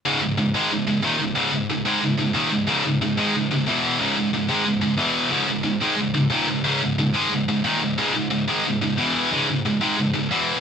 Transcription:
X:1
M:4/4
L:1/8
Q:1/4=181
K:C#m
V:1 name="Distorted electric guitar" clef=bass
[C,,G,,C,] [C,,G,,] [C,,G,,] [G,,D,G,] [C,,G,,] [C,,G,,] [D,,^A,,D,] [C,,G,,] | [C,,G,,C,] [C,,G,,] [C,,G,,] [G,,D,G,] [C,,G,,] [C,,G,,] [D,,^A,,D,] [C,,G,,] | [C,,G,,C,] [C,,G,,] [C,,G,,] [G,,D,G,] [C,,G,,] [C,,G,,] [E,,B,,E,]2 | [C,,G,,C,] [C,,G,,] [C,,G,,] [G,,D,G,] [C,,G,,] [C,,G,,] [E,,B,,E,]2 |
[C,,G,,C,] [C,,G,,] [C,,G,,] [G,,D,G,] [C,,G,,] [C,,G,,] [D,,^A,,D,] [C,,G,,] | [C,,G,,C,] [C,,G,,] [C,,G,,] [G,,D,G,] [C,,G,,] [C,,G,,] [D,,^A,,D,] [C,,G,,] | [C,,G,,C,] [C,,G,,] [C,,G,,] [G,,D,G,] [C,,G,,] [C,,G,,] [E,,B,,E,]2 | [C,,G,,C,] [C,,G,,] [C,,G,,] [G,,D,G,] [C,,G,,] [C,,G,,] [E,,B,,E,]2 |]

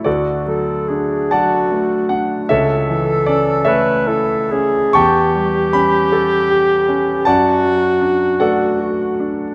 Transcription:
X:1
M:6/8
L:1/8
Q:3/8=51
K:A
V:1 name="Alto saxophone"
F A G F2 z | A3 B A G | [K:D] G6 | F4- F z |]
V:2 name="Grand piano"
[FAd]3 [dfa]2 f | [Ace]2 d [Ace]3 | [K:D] [gac']2 b4 | [dfa]3 [Adf] z2 |]
V:3 name="Grand piano"
D,, F, D F, A, D | C,, E, C A, E C | [K:D] E,, G, C A G C | F,, F, D A, F D |]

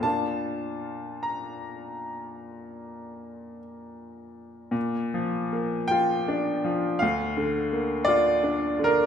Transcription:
X:1
M:4/4
L:1/16
Q:1/4=52
K:Bb
V:1 name="Grand piano"
a4 b8 z4 | z4 g4 f4 d3 B |]
V:2 name="Grand piano"
[B,,B,DF]16 | (3B,,2 F,2 B,2 (3F2 D2 F,2 (3D,,2 D,2 B,2 (3F2 D2 D,2 |]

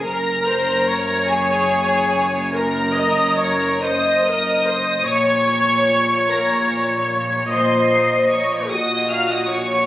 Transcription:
X:1
M:6/8
L:1/16
Q:3/8=49
K:Bbm
V:1 name="Violin section"
b6 a6 | b6 e'6 | d'6 b2 z4 | c'4 d'2 e'2 f' e' d'2 |]
V:2 name="Violin section"
B6 A6 | B6 e6 | d6 B2 z4 | c4 d2 e2 f e d2 |]
V:3 name="Viola section"
B2 c2 d8 | B2 e2 d2 c2 B2 c2 | d12 | e6 G6 |]
V:4 name="Cello section" clef=bass
G,,12- | G,,12 | B,,12 | B,,6 B,,6 |]
V:5 name="Double bass section" clef=bass
G,,,12- | G,,,12 | B,,,12 | B,,,6 B,,,6 |]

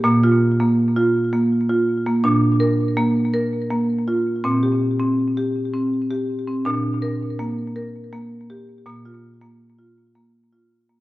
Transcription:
X:1
M:3/4
L:1/16
Q:1/4=82
K:Bb
V:1 name="Marimba"
B, F2 B,2 F2 B,2 F2 B, | D2 B2 B,2 B2 B,2 F2 | C G2 C2 G2 C2 G2 C | D2 B2 B,2 B2 B,2 G2 |
B, F2 B,2 F2 B,2 F2 B, |]
V:2 name="Marimba" clef=bass
B,,12 | B,,12 | B,,12 | B,,12 |
B,,12 |]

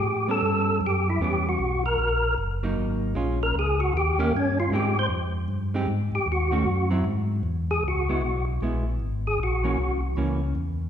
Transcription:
X:1
M:4/4
L:1/8
Q:"Swing" 1/4=154
K:Dblyd
V:1 name="Tonewheel organ"
G =A3 G =E G _G- | _G ^A3 z4 | z B A _G =G B, D F | G c z4 z G |
_G3 z4 ^G | _G3 z4 A | _G3 z4 z |]
V:2 name="Hollow-body jazz guitar"
z [G,=B,^C]3 z2 [G,B,C] z | z4 z [^F,^A,^D]3 | [A,DF] z4 [E,B,DG] z2 | [A,CEG] z4 [A,CEG] z2 |
z [E,=A,D_G] z [_G,C_F] z4 | z [A,_C_F] z2 [A,CF] z3 | z [_F,B,D] z2 [F,B,D] z3 |]
V:3 name="Tonewheel organ" clef=bass
=A,,2 G,,2 _G,,2 =E,,2 | =B,,,2 ^A,,,2 ^F,,,2 _A,,,2 | B,,,2 D,,2 E,,2 G,,2 | A,,2 F,,2 G,,2 A,, A,, |
E,,2 _G,,2 ^G,,2 =E,,2 | D,,2 _C,,2 B,,,2 A,,,2 | B,,,2 C,,2 D,,2 _F,,2 |]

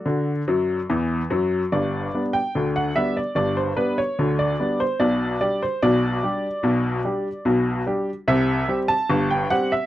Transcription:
X:1
M:2/4
L:1/16
Q:1/4=73
K:G
V:1 name="Upright piano"
[Ad]4 z4 | d3 g2 f e d | d c B ^c2 d2 =c | d2 d c d4- |
d6 z2 | e3 a2 g f e |]
V:2 name="Upright piano" clef=bass
[D,F]2 [F,,F,]2 [E,,E,]2 [F,,F,]2 | [G,,,G,,]2 [G,B,D]2 [D,,D,]2 [G,B,D]2 | [G,,,G,,]2 [G,B,D]2 [D,,D,]2 [G,B,D]2 | [B,,,B,,]2 [G,DG]2 [B,,,B,,]2 [G,DG]2 |
[B,,,B,,]2 [G,DG]2 [B,,,B,,]2 [G,DG]2 | [C,,C,]2 [G,CG]2 [G,,,G,,]2 [G,CG]2 |]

